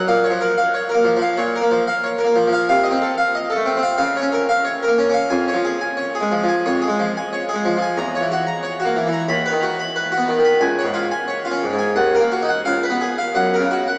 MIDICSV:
0, 0, Header, 1, 2, 480
1, 0, Start_track
1, 0, Tempo, 659341
1, 42, Time_signature, 4, 2, 24, 8
1, 7242, Tempo, 671141
1, 8682, Tempo, 701754
1, 10064, End_track
2, 0, Start_track
2, 0, Title_t, "Harpsichord"
2, 0, Program_c, 0, 6
2, 56, Note_on_c, 0, 46, 65
2, 60, Note_on_c, 0, 77, 75
2, 176, Note_on_c, 0, 73, 52
2, 177, Note_off_c, 0, 77, 0
2, 204, Note_off_c, 0, 46, 0
2, 221, Note_on_c, 0, 53, 48
2, 294, Note_off_c, 0, 73, 0
2, 298, Note_on_c, 0, 70, 55
2, 378, Note_off_c, 0, 53, 0
2, 415, Note_off_c, 0, 70, 0
2, 420, Note_on_c, 0, 77, 56
2, 535, Note_off_c, 0, 77, 0
2, 540, Note_on_c, 0, 73, 60
2, 650, Note_on_c, 0, 70, 49
2, 655, Note_off_c, 0, 73, 0
2, 688, Note_on_c, 0, 58, 51
2, 759, Note_on_c, 0, 53, 53
2, 770, Note_off_c, 0, 70, 0
2, 840, Note_off_c, 0, 53, 0
2, 849, Note_on_c, 0, 53, 46
2, 850, Note_off_c, 0, 58, 0
2, 887, Note_on_c, 0, 77, 51
2, 1000, Note_on_c, 0, 73, 60
2, 1002, Note_on_c, 0, 46, 59
2, 1007, Note_off_c, 0, 77, 0
2, 1010, Note_off_c, 0, 53, 0
2, 1124, Note_off_c, 0, 73, 0
2, 1134, Note_on_c, 0, 70, 57
2, 1154, Note_off_c, 0, 46, 0
2, 1174, Note_on_c, 0, 58, 51
2, 1246, Note_on_c, 0, 53, 55
2, 1250, Note_off_c, 0, 70, 0
2, 1332, Note_off_c, 0, 58, 0
2, 1365, Note_off_c, 0, 53, 0
2, 1365, Note_on_c, 0, 77, 60
2, 1483, Note_on_c, 0, 73, 53
2, 1485, Note_off_c, 0, 77, 0
2, 1590, Note_on_c, 0, 70, 47
2, 1604, Note_off_c, 0, 73, 0
2, 1635, Note_on_c, 0, 58, 47
2, 1716, Note_on_c, 0, 53, 59
2, 1717, Note_off_c, 0, 70, 0
2, 1793, Note_off_c, 0, 53, 0
2, 1801, Note_off_c, 0, 58, 0
2, 1801, Note_on_c, 0, 53, 52
2, 1840, Note_on_c, 0, 77, 54
2, 1950, Note_off_c, 0, 77, 0
2, 1956, Note_off_c, 0, 53, 0
2, 1958, Note_on_c, 0, 77, 84
2, 1960, Note_on_c, 0, 48, 72
2, 2064, Note_on_c, 0, 75, 57
2, 2080, Note_off_c, 0, 77, 0
2, 2110, Note_off_c, 0, 48, 0
2, 2118, Note_on_c, 0, 60, 55
2, 2192, Note_off_c, 0, 75, 0
2, 2196, Note_on_c, 0, 69, 54
2, 2281, Note_off_c, 0, 60, 0
2, 2313, Note_on_c, 0, 77, 61
2, 2318, Note_off_c, 0, 69, 0
2, 2437, Note_off_c, 0, 77, 0
2, 2439, Note_on_c, 0, 75, 55
2, 2548, Note_on_c, 0, 69, 60
2, 2559, Note_off_c, 0, 75, 0
2, 2595, Note_on_c, 0, 57, 51
2, 2663, Note_on_c, 0, 60, 56
2, 2673, Note_off_c, 0, 69, 0
2, 2736, Note_off_c, 0, 60, 0
2, 2745, Note_on_c, 0, 60, 52
2, 2758, Note_off_c, 0, 57, 0
2, 2786, Note_on_c, 0, 77, 61
2, 2888, Note_off_c, 0, 77, 0
2, 2897, Note_on_c, 0, 49, 76
2, 2897, Note_on_c, 0, 77, 80
2, 2905, Note_off_c, 0, 60, 0
2, 3027, Note_off_c, 0, 77, 0
2, 3034, Note_on_c, 0, 73, 64
2, 3056, Note_off_c, 0, 49, 0
2, 3069, Note_on_c, 0, 61, 57
2, 3148, Note_on_c, 0, 70, 60
2, 3156, Note_off_c, 0, 73, 0
2, 3235, Note_off_c, 0, 61, 0
2, 3269, Note_on_c, 0, 77, 61
2, 3273, Note_off_c, 0, 70, 0
2, 3383, Note_on_c, 0, 73, 58
2, 3394, Note_off_c, 0, 77, 0
2, 3512, Note_off_c, 0, 73, 0
2, 3514, Note_on_c, 0, 70, 61
2, 3548, Note_on_c, 0, 58, 54
2, 3628, Note_on_c, 0, 61, 62
2, 3638, Note_off_c, 0, 70, 0
2, 3702, Note_off_c, 0, 61, 0
2, 3710, Note_on_c, 0, 61, 57
2, 3717, Note_off_c, 0, 58, 0
2, 3741, Note_on_c, 0, 77, 64
2, 3859, Note_on_c, 0, 80, 84
2, 3862, Note_on_c, 0, 41, 74
2, 3865, Note_off_c, 0, 77, 0
2, 3870, Note_off_c, 0, 61, 0
2, 3990, Note_off_c, 0, 80, 0
2, 3990, Note_on_c, 0, 73, 60
2, 4021, Note_off_c, 0, 41, 0
2, 4031, Note_on_c, 0, 53, 62
2, 4112, Note_on_c, 0, 68, 58
2, 4116, Note_off_c, 0, 73, 0
2, 4199, Note_off_c, 0, 53, 0
2, 4231, Note_on_c, 0, 80, 59
2, 4237, Note_off_c, 0, 68, 0
2, 4347, Note_on_c, 0, 73, 61
2, 4356, Note_off_c, 0, 80, 0
2, 4475, Note_off_c, 0, 73, 0
2, 4477, Note_on_c, 0, 68, 61
2, 4518, Note_on_c, 0, 56, 57
2, 4598, Note_on_c, 0, 53, 59
2, 4599, Note_off_c, 0, 68, 0
2, 4677, Note_off_c, 0, 53, 0
2, 4682, Note_off_c, 0, 56, 0
2, 4686, Note_on_c, 0, 53, 58
2, 4721, Note_on_c, 0, 80, 62
2, 4841, Note_off_c, 0, 80, 0
2, 4846, Note_off_c, 0, 53, 0
2, 4847, Note_on_c, 0, 73, 68
2, 4849, Note_on_c, 0, 41, 64
2, 4964, Note_on_c, 0, 68, 64
2, 4965, Note_off_c, 0, 73, 0
2, 4995, Note_off_c, 0, 41, 0
2, 5006, Note_on_c, 0, 56, 61
2, 5083, Note_off_c, 0, 68, 0
2, 5092, Note_on_c, 0, 53, 65
2, 5166, Note_off_c, 0, 56, 0
2, 5207, Note_off_c, 0, 53, 0
2, 5221, Note_on_c, 0, 80, 72
2, 5331, Note_off_c, 0, 80, 0
2, 5335, Note_on_c, 0, 73, 63
2, 5449, Note_off_c, 0, 73, 0
2, 5452, Note_on_c, 0, 68, 57
2, 5486, Note_on_c, 0, 56, 53
2, 5567, Note_off_c, 0, 68, 0
2, 5569, Note_on_c, 0, 53, 68
2, 5647, Note_off_c, 0, 56, 0
2, 5649, Note_off_c, 0, 53, 0
2, 5658, Note_on_c, 0, 53, 59
2, 5694, Note_on_c, 0, 80, 65
2, 5804, Note_off_c, 0, 80, 0
2, 5806, Note_off_c, 0, 53, 0
2, 5806, Note_on_c, 0, 40, 76
2, 5806, Note_on_c, 0, 82, 89
2, 5926, Note_off_c, 0, 82, 0
2, 5936, Note_on_c, 0, 73, 63
2, 5956, Note_off_c, 0, 40, 0
2, 5978, Note_on_c, 0, 52, 62
2, 6051, Note_off_c, 0, 73, 0
2, 6056, Note_on_c, 0, 66, 65
2, 6133, Note_off_c, 0, 52, 0
2, 6164, Note_on_c, 0, 82, 67
2, 6170, Note_off_c, 0, 66, 0
2, 6282, Note_on_c, 0, 73, 67
2, 6284, Note_off_c, 0, 82, 0
2, 6404, Note_off_c, 0, 73, 0
2, 6406, Note_on_c, 0, 66, 60
2, 6443, Note_on_c, 0, 58, 58
2, 6525, Note_on_c, 0, 52, 61
2, 6526, Note_off_c, 0, 66, 0
2, 6595, Note_off_c, 0, 52, 0
2, 6604, Note_on_c, 0, 52, 57
2, 6608, Note_off_c, 0, 58, 0
2, 6645, Note_on_c, 0, 82, 66
2, 6760, Note_on_c, 0, 39, 80
2, 6760, Note_on_c, 0, 83, 83
2, 6762, Note_off_c, 0, 52, 0
2, 6762, Note_off_c, 0, 82, 0
2, 6885, Note_on_c, 0, 71, 60
2, 6886, Note_off_c, 0, 83, 0
2, 6916, Note_off_c, 0, 39, 0
2, 6927, Note_on_c, 0, 51, 64
2, 7009, Note_off_c, 0, 71, 0
2, 7009, Note_on_c, 0, 66, 62
2, 7092, Note_off_c, 0, 51, 0
2, 7131, Note_off_c, 0, 66, 0
2, 7131, Note_on_c, 0, 83, 62
2, 7250, Note_on_c, 0, 71, 61
2, 7252, Note_off_c, 0, 83, 0
2, 7365, Note_on_c, 0, 66, 55
2, 7370, Note_off_c, 0, 71, 0
2, 7405, Note_on_c, 0, 59, 51
2, 7482, Note_on_c, 0, 51, 65
2, 7488, Note_off_c, 0, 66, 0
2, 7548, Note_off_c, 0, 51, 0
2, 7556, Note_on_c, 0, 51, 60
2, 7570, Note_off_c, 0, 59, 0
2, 7600, Note_on_c, 0, 83, 63
2, 7715, Note_on_c, 0, 37, 73
2, 7715, Note_on_c, 0, 80, 86
2, 7718, Note_off_c, 0, 51, 0
2, 7720, Note_off_c, 0, 83, 0
2, 7843, Note_on_c, 0, 73, 67
2, 7844, Note_off_c, 0, 80, 0
2, 7873, Note_off_c, 0, 37, 0
2, 7878, Note_on_c, 0, 44, 59
2, 7950, Note_on_c, 0, 65, 62
2, 7968, Note_off_c, 0, 73, 0
2, 8047, Note_off_c, 0, 44, 0
2, 8076, Note_on_c, 0, 80, 66
2, 8081, Note_off_c, 0, 65, 0
2, 8194, Note_on_c, 0, 73, 63
2, 8203, Note_off_c, 0, 80, 0
2, 8317, Note_on_c, 0, 65, 54
2, 8322, Note_off_c, 0, 73, 0
2, 8362, Note_on_c, 0, 61, 50
2, 8443, Note_off_c, 0, 65, 0
2, 8447, Note_on_c, 0, 44, 55
2, 8509, Note_off_c, 0, 44, 0
2, 8517, Note_on_c, 0, 44, 55
2, 8528, Note_off_c, 0, 61, 0
2, 8557, Note_on_c, 0, 80, 54
2, 8679, Note_off_c, 0, 80, 0
2, 8680, Note_off_c, 0, 44, 0
2, 8680, Note_on_c, 0, 39, 67
2, 8682, Note_on_c, 0, 78, 75
2, 8804, Note_off_c, 0, 78, 0
2, 8809, Note_on_c, 0, 70, 56
2, 8832, Note_off_c, 0, 39, 0
2, 8847, Note_on_c, 0, 58, 54
2, 8925, Note_on_c, 0, 66, 52
2, 8927, Note_off_c, 0, 70, 0
2, 8999, Note_on_c, 0, 63, 48
2, 9007, Note_off_c, 0, 58, 0
2, 9041, Note_on_c, 0, 78, 58
2, 9044, Note_off_c, 0, 66, 0
2, 9111, Note_off_c, 0, 63, 0
2, 9155, Note_on_c, 0, 77, 71
2, 9156, Note_off_c, 0, 78, 0
2, 9160, Note_on_c, 0, 37, 62
2, 9279, Note_off_c, 0, 77, 0
2, 9279, Note_on_c, 0, 71, 49
2, 9310, Note_off_c, 0, 37, 0
2, 9324, Note_on_c, 0, 59, 44
2, 9400, Note_on_c, 0, 68, 52
2, 9401, Note_off_c, 0, 71, 0
2, 9486, Note_off_c, 0, 59, 0
2, 9517, Note_on_c, 0, 77, 51
2, 9523, Note_off_c, 0, 68, 0
2, 9631, Note_on_c, 0, 42, 57
2, 9633, Note_on_c, 0, 78, 75
2, 9636, Note_off_c, 0, 77, 0
2, 9761, Note_off_c, 0, 78, 0
2, 9761, Note_on_c, 0, 70, 56
2, 9790, Note_off_c, 0, 42, 0
2, 9799, Note_on_c, 0, 49, 48
2, 9878, Note_on_c, 0, 66, 52
2, 9886, Note_off_c, 0, 70, 0
2, 9968, Note_off_c, 0, 49, 0
2, 9993, Note_on_c, 0, 78, 53
2, 10006, Note_off_c, 0, 66, 0
2, 10064, Note_off_c, 0, 78, 0
2, 10064, End_track
0, 0, End_of_file